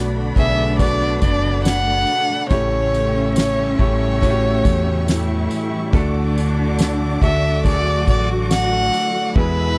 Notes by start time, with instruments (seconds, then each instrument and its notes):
Already playing: fretless electric bass B1, steel-string acoustic guitar B2 D4 F#4, cello section D3 D4, upright piano A3 B3 D4 F#4, string section A3 D5 F#5 B5
0.15 steel-string acoustic guitar A3
0.36 fretless electric bass B1, upright piano A3 B3 D4 G#4, steel-string acoustic guitar D4, violin E5, kick, ride, tambourine
0.58 steel-string acoustic guitar A3
0.79 steel-string acoustic guitar B2, upright piano A3 B3 D4 F#4, violin D5, kick, ride, tambourine
1.01 steel-string acoustic guitar D4
1.21 fretless electric bass F#1, steel-string acoustic guitar F#4, violin D5, kick, ride, tambourine
1.44 steel-string acoustic guitar D4
1.64 steel-string acoustic guitar F#4, violin F#5, snare, ride, tambourine
1.87 steel-string acoustic guitar A3, ride
2.07 steel-string acoustic guitar D4, ride, tambourine
2.30 steel-string acoustic guitar A3
2.49 fretless electric bass A1, steel-string acoustic guitar A2, cello section C#3 C#4, upright piano A3 C#4 E4 G4, violin C#5, string section E5 G5 C#6, kick, ride, tambourine
2.72 steel-string acoustic guitar C#4
2.94 steel-string acoustic guitar G4, ride, tambourine
3.16 steel-string acoustic guitar C#4
3.35 steel-string acoustic guitar G4, violin C#5, snare, ride, tambourine
3.58 steel-string acoustic guitar G3
3.78 fretless electric bass A1, upright piano A3 C#4 E4 G4, steel-string acoustic guitar C#4, violin C#5, kick, ride
4.01 steel-string acoustic guitar G3
4.22 steel-string acoustic guitar A2, upright piano A3 C#4 E4 F#4, kick, ride, tambourine
4.30 upright piano G4
4.43 steel-string acoustic guitar C#4
4.65 fretless electric bass E2, steel-string acoustic guitar G4, kick, ride, tambourine
4.86 steel-string acoustic guitar C#4
5.07 cello section E3 E4, steel-string acoustic guitar G4, snare, ride, tambourine
5.29 steel-string acoustic guitar G3, ride
5.50 steel-string acoustic guitar C#4, ride, tambourine
5.71 steel-string acoustic guitar G3
5.92 fretless electric bass D2, upright piano A2 A3 D4 F#4 A4, steel-string acoustic guitar D3, cello section D3 D4, string section D5 F#5 D6, kick, ride, tambourine
6.14 steel-string acoustic guitar D4, ride
6.35 steel-string acoustic guitar F#4, ride, tambourine
6.57 steel-string acoustic guitar D4
6.78 steel-string acoustic guitar F#4, snare, ride, tambourine
7.00 steel-string acoustic guitar A3
7.21 fretless electric bass D2, upright piano A3 D4 F#4 A4, steel-string acoustic guitar D4, violin E5, kick, ride, tambourine
7.43 steel-string acoustic guitar A3
7.64 steel-string acoustic guitar D3, cello section F#3 F#4, upright piano A3 D4 F#4 G#4, violin D5, kick, ride, tambourine
7.72 upright piano A4
7.85 steel-string acoustic guitar D4
8.07 fretless electric bass A1, steel-string acoustic guitar F#4, violin D5, kick, ride, tambourine
8.28 steel-string acoustic guitar D4
8.50 steel-string acoustic guitar F#4, violin F#5, snare, ride, tambourine
8.71 steel-string acoustic guitar A3
8.92 steel-string acoustic guitar D4, ride, tambourine
9.14 steel-string acoustic guitar A3
9.35 steel-string acoustic guitar E2, fretless electric bass E2, upright piano B2 G#3 B3 E4 G#4, cello section E3 E4, string section B4 E5 G#5 E6, violin B4, kick, ride
9.57 steel-string acoustic guitar B3, ride